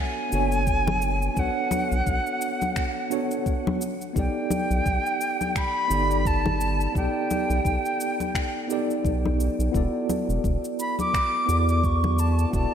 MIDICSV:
0, 0, Header, 1, 5, 480
1, 0, Start_track
1, 0, Tempo, 697674
1, 943, Time_signature, 4, 2, 24, 8
1, 8765, End_track
2, 0, Start_track
2, 0, Title_t, "Flute"
2, 0, Program_c, 0, 73
2, 0, Note_on_c, 0, 80, 115
2, 957, Note_on_c, 0, 78, 98
2, 967, Note_off_c, 0, 80, 0
2, 2630, Note_off_c, 0, 78, 0
2, 2881, Note_on_c, 0, 79, 103
2, 3834, Note_on_c, 0, 83, 107
2, 3845, Note_off_c, 0, 79, 0
2, 4314, Note_on_c, 0, 81, 95
2, 4324, Note_off_c, 0, 83, 0
2, 4788, Note_off_c, 0, 81, 0
2, 4796, Note_on_c, 0, 79, 96
2, 6202, Note_off_c, 0, 79, 0
2, 7432, Note_on_c, 0, 83, 88
2, 7554, Note_off_c, 0, 83, 0
2, 7567, Note_on_c, 0, 86, 115
2, 8016, Note_off_c, 0, 86, 0
2, 8047, Note_on_c, 0, 86, 98
2, 8153, Note_on_c, 0, 85, 92
2, 8163, Note_off_c, 0, 86, 0
2, 8390, Note_on_c, 0, 81, 87
2, 8400, Note_off_c, 0, 85, 0
2, 8626, Note_off_c, 0, 81, 0
2, 8630, Note_on_c, 0, 81, 96
2, 8765, Note_off_c, 0, 81, 0
2, 8765, End_track
3, 0, Start_track
3, 0, Title_t, "Tine electric piano"
3, 0, Program_c, 1, 4
3, 0, Control_c, 1, 64, 127
3, 0, Note_on_c, 1, 59, 72
3, 0, Note_on_c, 1, 62, 66
3, 0, Note_on_c, 1, 66, 68
3, 0, Note_on_c, 1, 69, 71
3, 0, Note_on_c, 1, 73, 86
3, 188, Note_off_c, 1, 59, 0
3, 193, Note_off_c, 1, 62, 0
3, 197, Note_off_c, 1, 66, 0
3, 202, Note_on_c, 1, 59, 70
3, 203, Note_off_c, 1, 69, 0
3, 207, Note_off_c, 1, 73, 0
3, 211, Note_on_c, 1, 62, 68
3, 223, Note_on_c, 1, 66, 67
3, 231, Note_on_c, 1, 69, 63
3, 242, Note_on_c, 1, 73, 81
3, 908, Note_off_c, 1, 59, 0
3, 912, Note_off_c, 1, 62, 0
3, 918, Note_off_c, 1, 66, 0
3, 921, Note_on_c, 1, 59, 80
3, 922, Note_off_c, 1, 69, 0
3, 928, Note_off_c, 1, 73, 0
3, 930, Note_on_c, 1, 62, 68
3, 940, Note_on_c, 1, 66, 69
3, 950, Note_on_c, 1, 69, 70
3, 960, Note_on_c, 1, 73, 81
3, 2107, Note_off_c, 1, 59, 0
3, 2112, Note_off_c, 1, 62, 0
3, 2117, Note_off_c, 1, 66, 0
3, 2122, Note_off_c, 1, 69, 0
3, 2127, Note_off_c, 1, 73, 0
3, 2132, Note_on_c, 1, 59, 71
3, 2137, Note_on_c, 1, 62, 70
3, 2142, Note_on_c, 1, 66, 65
3, 2147, Note_on_c, 1, 69, 64
3, 2152, Note_on_c, 1, 73, 79
3, 2605, Note_off_c, 1, 59, 0
3, 2608, Note_off_c, 1, 62, 0
3, 2610, Note_off_c, 1, 66, 0
3, 2613, Note_off_c, 1, 69, 0
3, 2615, Note_off_c, 1, 73, 0
3, 2633, Control_c, 1, 64, 0
3, 2745, Control_c, 1, 64, 127
3, 2844, Note_on_c, 1, 59, 72
3, 2854, Note_on_c, 1, 63, 69
3, 2863, Note_on_c, 1, 67, 74
3, 2873, Note_on_c, 1, 69, 69
3, 2884, Note_on_c, 1, 74, 80
3, 4029, Note_off_c, 1, 59, 0
3, 4033, Note_off_c, 1, 63, 0
3, 4038, Note_off_c, 1, 67, 0
3, 4043, Note_off_c, 1, 69, 0
3, 4043, Note_on_c, 1, 59, 71
3, 4048, Note_off_c, 1, 74, 0
3, 4054, Note_on_c, 1, 63, 66
3, 4064, Note_on_c, 1, 67, 64
3, 4074, Note_on_c, 1, 69, 65
3, 4083, Note_on_c, 1, 74, 81
3, 4748, Note_off_c, 1, 59, 0
3, 4754, Note_off_c, 1, 63, 0
3, 4759, Note_off_c, 1, 67, 0
3, 4763, Note_off_c, 1, 69, 0
3, 4763, Note_on_c, 1, 59, 73
3, 4768, Note_off_c, 1, 74, 0
3, 4773, Note_on_c, 1, 63, 74
3, 4783, Note_on_c, 1, 67, 67
3, 4792, Note_on_c, 1, 69, 72
3, 4802, Note_on_c, 1, 74, 88
3, 5948, Note_off_c, 1, 59, 0
3, 5953, Note_off_c, 1, 63, 0
3, 5958, Note_off_c, 1, 67, 0
3, 5963, Note_off_c, 1, 69, 0
3, 5965, Note_on_c, 1, 59, 73
3, 5968, Note_off_c, 1, 74, 0
3, 5975, Note_on_c, 1, 63, 65
3, 5984, Note_on_c, 1, 67, 65
3, 5995, Note_on_c, 1, 69, 65
3, 6004, Note_on_c, 1, 74, 82
3, 6669, Note_off_c, 1, 59, 0
3, 6674, Note_off_c, 1, 63, 0
3, 6679, Note_off_c, 1, 67, 0
3, 6684, Note_off_c, 1, 69, 0
3, 6684, Note_on_c, 1, 59, 80
3, 6688, Note_off_c, 1, 74, 0
3, 6693, Note_on_c, 1, 64, 72
3, 6704, Note_on_c, 1, 66, 70
3, 6710, Control_c, 1, 64, 0
3, 6714, Note_on_c, 1, 69, 75
3, 6723, Note_on_c, 1, 74, 84
3, 6839, Control_c, 1, 64, 127
3, 7869, Note_off_c, 1, 59, 0
3, 7873, Note_off_c, 1, 64, 0
3, 7879, Note_off_c, 1, 66, 0
3, 7884, Note_off_c, 1, 69, 0
3, 7884, Note_on_c, 1, 59, 71
3, 7888, Note_off_c, 1, 74, 0
3, 7894, Note_on_c, 1, 64, 66
3, 7904, Note_on_c, 1, 66, 65
3, 7913, Note_on_c, 1, 69, 66
3, 7923, Note_on_c, 1, 74, 78
3, 8589, Note_off_c, 1, 59, 0
3, 8593, Note_off_c, 1, 64, 0
3, 8599, Note_off_c, 1, 66, 0
3, 8603, Note_off_c, 1, 69, 0
3, 8603, Note_on_c, 1, 59, 73
3, 8608, Note_off_c, 1, 74, 0
3, 8612, Note_on_c, 1, 64, 70
3, 8622, Note_on_c, 1, 66, 74
3, 8633, Note_on_c, 1, 69, 70
3, 8642, Note_on_c, 1, 74, 86
3, 8765, Note_off_c, 1, 59, 0
3, 8765, Note_off_c, 1, 64, 0
3, 8765, Note_off_c, 1, 66, 0
3, 8765, Note_off_c, 1, 69, 0
3, 8765, Note_off_c, 1, 74, 0
3, 8765, End_track
4, 0, Start_track
4, 0, Title_t, "Analog synth bass"
4, 0, Program_c, 2, 38
4, 225, Note_on_c, 2, 30, 93
4, 892, Note_off_c, 2, 30, 0
4, 941, Note_on_c, 2, 35, 93
4, 1035, Note_off_c, 2, 35, 0
4, 1319, Note_on_c, 2, 35, 79
4, 1391, Note_off_c, 2, 35, 0
4, 1421, Note_on_c, 2, 35, 87
4, 1515, Note_off_c, 2, 35, 0
4, 2862, Note_on_c, 2, 35, 92
4, 2956, Note_off_c, 2, 35, 0
4, 3238, Note_on_c, 2, 35, 84
4, 3310, Note_off_c, 2, 35, 0
4, 3343, Note_on_c, 2, 35, 91
4, 3436, Note_off_c, 2, 35, 0
4, 4062, Note_on_c, 2, 31, 91
4, 4730, Note_off_c, 2, 31, 0
4, 4784, Note_on_c, 2, 35, 97
4, 4877, Note_off_c, 2, 35, 0
4, 5160, Note_on_c, 2, 35, 81
4, 5231, Note_off_c, 2, 35, 0
4, 5264, Note_on_c, 2, 35, 92
4, 5357, Note_off_c, 2, 35, 0
4, 6224, Note_on_c, 2, 35, 82
4, 6531, Note_off_c, 2, 35, 0
4, 6600, Note_on_c, 2, 35, 74
4, 6671, Note_off_c, 2, 35, 0
4, 6705, Note_on_c, 2, 28, 100
4, 6797, Note_off_c, 2, 28, 0
4, 7079, Note_on_c, 2, 28, 80
4, 7150, Note_off_c, 2, 28, 0
4, 7184, Note_on_c, 2, 28, 97
4, 7277, Note_off_c, 2, 28, 0
4, 7904, Note_on_c, 2, 40, 88
4, 8571, Note_off_c, 2, 40, 0
4, 8623, Note_on_c, 2, 28, 101
4, 8716, Note_off_c, 2, 28, 0
4, 8765, End_track
5, 0, Start_track
5, 0, Title_t, "Drums"
5, 222, Note_on_c, 9, 82, 75
5, 291, Note_off_c, 9, 82, 0
5, 357, Note_on_c, 9, 82, 32
5, 426, Note_off_c, 9, 82, 0
5, 461, Note_on_c, 9, 36, 88
5, 461, Note_on_c, 9, 82, 40
5, 530, Note_off_c, 9, 36, 0
5, 530, Note_off_c, 9, 82, 0
5, 600, Note_on_c, 9, 64, 75
5, 602, Note_on_c, 9, 63, 97
5, 669, Note_off_c, 9, 64, 0
5, 671, Note_off_c, 9, 63, 0
5, 701, Note_on_c, 9, 82, 66
5, 769, Note_off_c, 9, 82, 0
5, 839, Note_on_c, 9, 82, 31
5, 908, Note_off_c, 9, 82, 0
5, 941, Note_on_c, 9, 36, 96
5, 942, Note_on_c, 9, 82, 44
5, 1010, Note_off_c, 9, 36, 0
5, 1011, Note_off_c, 9, 82, 0
5, 1177, Note_on_c, 9, 63, 95
5, 1182, Note_on_c, 9, 82, 77
5, 1245, Note_off_c, 9, 63, 0
5, 1251, Note_off_c, 9, 82, 0
5, 1319, Note_on_c, 9, 82, 33
5, 1388, Note_off_c, 9, 82, 0
5, 1421, Note_on_c, 9, 36, 97
5, 1423, Note_on_c, 9, 82, 38
5, 1490, Note_off_c, 9, 36, 0
5, 1492, Note_off_c, 9, 82, 0
5, 1558, Note_on_c, 9, 82, 30
5, 1627, Note_off_c, 9, 82, 0
5, 1662, Note_on_c, 9, 82, 72
5, 1731, Note_off_c, 9, 82, 0
5, 1799, Note_on_c, 9, 82, 33
5, 1802, Note_on_c, 9, 63, 67
5, 1868, Note_off_c, 9, 82, 0
5, 1870, Note_off_c, 9, 63, 0
5, 1900, Note_on_c, 9, 26, 76
5, 1901, Note_on_c, 9, 36, 99
5, 1902, Note_on_c, 9, 82, 44
5, 1969, Note_off_c, 9, 26, 0
5, 1970, Note_off_c, 9, 36, 0
5, 1971, Note_off_c, 9, 82, 0
5, 2142, Note_on_c, 9, 82, 75
5, 2210, Note_off_c, 9, 82, 0
5, 2279, Note_on_c, 9, 82, 34
5, 2348, Note_off_c, 9, 82, 0
5, 2382, Note_on_c, 9, 36, 100
5, 2383, Note_on_c, 9, 82, 41
5, 2450, Note_off_c, 9, 36, 0
5, 2452, Note_off_c, 9, 82, 0
5, 2526, Note_on_c, 9, 63, 97
5, 2595, Note_off_c, 9, 63, 0
5, 2625, Note_on_c, 9, 82, 73
5, 2694, Note_off_c, 9, 82, 0
5, 2762, Note_on_c, 9, 82, 30
5, 2831, Note_off_c, 9, 82, 0
5, 2862, Note_on_c, 9, 36, 109
5, 2865, Note_on_c, 9, 82, 46
5, 2931, Note_off_c, 9, 36, 0
5, 2934, Note_off_c, 9, 82, 0
5, 3099, Note_on_c, 9, 63, 86
5, 3104, Note_on_c, 9, 82, 76
5, 3168, Note_off_c, 9, 63, 0
5, 3173, Note_off_c, 9, 82, 0
5, 3240, Note_on_c, 9, 82, 32
5, 3309, Note_off_c, 9, 82, 0
5, 3342, Note_on_c, 9, 36, 100
5, 3345, Note_on_c, 9, 82, 42
5, 3411, Note_off_c, 9, 36, 0
5, 3413, Note_off_c, 9, 82, 0
5, 3482, Note_on_c, 9, 82, 30
5, 3551, Note_off_c, 9, 82, 0
5, 3585, Note_on_c, 9, 82, 77
5, 3654, Note_off_c, 9, 82, 0
5, 3722, Note_on_c, 9, 63, 60
5, 3723, Note_on_c, 9, 82, 32
5, 3791, Note_off_c, 9, 63, 0
5, 3791, Note_off_c, 9, 82, 0
5, 3823, Note_on_c, 9, 36, 94
5, 3824, Note_on_c, 9, 26, 75
5, 3826, Note_on_c, 9, 82, 44
5, 3891, Note_off_c, 9, 36, 0
5, 3893, Note_off_c, 9, 26, 0
5, 3895, Note_off_c, 9, 82, 0
5, 4065, Note_on_c, 9, 82, 75
5, 4134, Note_off_c, 9, 82, 0
5, 4203, Note_on_c, 9, 82, 33
5, 4272, Note_off_c, 9, 82, 0
5, 4303, Note_on_c, 9, 36, 98
5, 4309, Note_on_c, 9, 82, 43
5, 4372, Note_off_c, 9, 36, 0
5, 4378, Note_off_c, 9, 82, 0
5, 4442, Note_on_c, 9, 63, 89
5, 4444, Note_on_c, 9, 64, 81
5, 4511, Note_off_c, 9, 63, 0
5, 4512, Note_off_c, 9, 64, 0
5, 4547, Note_on_c, 9, 82, 70
5, 4616, Note_off_c, 9, 82, 0
5, 4683, Note_on_c, 9, 82, 33
5, 4752, Note_off_c, 9, 82, 0
5, 4784, Note_on_c, 9, 36, 102
5, 4789, Note_on_c, 9, 82, 42
5, 4852, Note_off_c, 9, 36, 0
5, 4858, Note_off_c, 9, 82, 0
5, 5027, Note_on_c, 9, 82, 79
5, 5029, Note_on_c, 9, 63, 78
5, 5096, Note_off_c, 9, 82, 0
5, 5098, Note_off_c, 9, 63, 0
5, 5163, Note_on_c, 9, 82, 34
5, 5232, Note_off_c, 9, 82, 0
5, 5263, Note_on_c, 9, 36, 102
5, 5268, Note_on_c, 9, 82, 43
5, 5332, Note_off_c, 9, 36, 0
5, 5337, Note_off_c, 9, 82, 0
5, 5405, Note_on_c, 9, 82, 31
5, 5474, Note_off_c, 9, 82, 0
5, 5508, Note_on_c, 9, 82, 75
5, 5577, Note_off_c, 9, 82, 0
5, 5643, Note_on_c, 9, 63, 60
5, 5646, Note_on_c, 9, 82, 32
5, 5712, Note_off_c, 9, 63, 0
5, 5715, Note_off_c, 9, 82, 0
5, 5743, Note_on_c, 9, 36, 91
5, 5747, Note_on_c, 9, 26, 76
5, 5750, Note_on_c, 9, 82, 43
5, 5812, Note_off_c, 9, 36, 0
5, 5816, Note_off_c, 9, 26, 0
5, 5818, Note_off_c, 9, 82, 0
5, 5988, Note_on_c, 9, 82, 75
5, 6057, Note_off_c, 9, 82, 0
5, 6126, Note_on_c, 9, 82, 32
5, 6195, Note_off_c, 9, 82, 0
5, 6224, Note_on_c, 9, 36, 99
5, 6231, Note_on_c, 9, 82, 43
5, 6293, Note_off_c, 9, 36, 0
5, 6299, Note_off_c, 9, 82, 0
5, 6367, Note_on_c, 9, 63, 89
5, 6436, Note_off_c, 9, 63, 0
5, 6469, Note_on_c, 9, 82, 71
5, 6538, Note_off_c, 9, 82, 0
5, 6606, Note_on_c, 9, 82, 32
5, 6674, Note_off_c, 9, 82, 0
5, 6704, Note_on_c, 9, 36, 102
5, 6708, Note_on_c, 9, 82, 40
5, 6773, Note_off_c, 9, 36, 0
5, 6777, Note_off_c, 9, 82, 0
5, 6945, Note_on_c, 9, 63, 84
5, 6947, Note_on_c, 9, 82, 77
5, 7014, Note_off_c, 9, 63, 0
5, 7016, Note_off_c, 9, 82, 0
5, 7085, Note_on_c, 9, 82, 33
5, 7153, Note_off_c, 9, 82, 0
5, 7184, Note_on_c, 9, 36, 97
5, 7187, Note_on_c, 9, 82, 39
5, 7253, Note_off_c, 9, 36, 0
5, 7256, Note_off_c, 9, 82, 0
5, 7324, Note_on_c, 9, 82, 29
5, 7393, Note_off_c, 9, 82, 0
5, 7427, Note_on_c, 9, 82, 70
5, 7496, Note_off_c, 9, 82, 0
5, 7560, Note_on_c, 9, 63, 67
5, 7565, Note_on_c, 9, 82, 33
5, 7629, Note_off_c, 9, 63, 0
5, 7634, Note_off_c, 9, 82, 0
5, 7663, Note_on_c, 9, 36, 91
5, 7668, Note_on_c, 9, 26, 71
5, 7670, Note_on_c, 9, 82, 41
5, 7732, Note_off_c, 9, 36, 0
5, 7736, Note_off_c, 9, 26, 0
5, 7739, Note_off_c, 9, 82, 0
5, 7907, Note_on_c, 9, 82, 76
5, 7976, Note_off_c, 9, 82, 0
5, 8042, Note_on_c, 9, 82, 32
5, 8111, Note_off_c, 9, 82, 0
5, 8143, Note_on_c, 9, 36, 94
5, 8146, Note_on_c, 9, 82, 38
5, 8212, Note_off_c, 9, 36, 0
5, 8215, Note_off_c, 9, 82, 0
5, 8283, Note_on_c, 9, 63, 84
5, 8284, Note_on_c, 9, 64, 69
5, 8351, Note_off_c, 9, 63, 0
5, 8353, Note_off_c, 9, 64, 0
5, 8385, Note_on_c, 9, 82, 70
5, 8454, Note_off_c, 9, 82, 0
5, 8523, Note_on_c, 9, 82, 30
5, 8592, Note_off_c, 9, 82, 0
5, 8624, Note_on_c, 9, 36, 103
5, 8626, Note_on_c, 9, 82, 40
5, 8692, Note_off_c, 9, 36, 0
5, 8695, Note_off_c, 9, 82, 0
5, 8765, End_track
0, 0, End_of_file